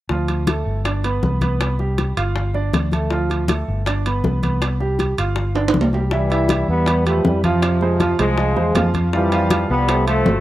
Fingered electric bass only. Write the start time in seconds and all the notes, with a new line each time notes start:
0.10 D2
0.66 G1
1.23 C2
2.17 G1
2.74 D2
3.68 G1
4.24 C2
5.18 G1
5.75 C2
6.68 E2
7.25 F2
8.19 C2
8.57 E2
8.76 F2
9.70 C2
10.26 G1